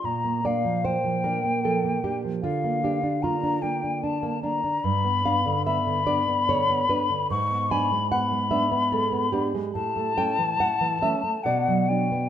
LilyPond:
<<
  \new Staff \with { instrumentName = "Flute" } { \time 3/4 \key bes \lydian \tempo 4 = 74 bes''8 f''8 g''4. r8 | f''4 bes''8 g''8 a''8 bes''8 | \key g \lydian b''4 b''2 | cis'''8 b''8 b''4. r8 |
a''2 fis''8 g''8 | }
  \new Staff \with { instrumentName = "Nylon-string guitar" } { \time 3/4 \key bes \lydian << { f'8 d''8 c''8 bes'8 a'8 g'8 | f'8 g'8 f'4 r4 | \key g \lydian r8 f''8 e''8 d''8 cis''8 b'8 | r8 gis''8 fis''8 e''8 a'8 g'8~ |
g'8 g''8 fis''8 e''8 d''4 | } \\ { bes,16 bes16 <bes d'>16 f16 bes16 f16 <bes d'>16 bes16 f16 bes16 <bes d'>16 f16 | d16 bes16 <bes d'>16 d'16 bes16 d'16 <bes d'>16 bes16 d'16 bes16 <bes d'>16 d'16 | g,16 b16 <b d'>16 d16 b16 d16 <b d'>16 b16 d16 b16 <b d'>16 d16 | gis,16 b16 <b d'>16 gis16 b16 gis16 <b d'>16 b16 gis16 b16 <b d'>16 gis16 |
a,16 a16 <a cis'>16 e16 a16 e16 <a cis'>16 a16 b,16 fis16 <fis d'>16 b16 | } >> }
>>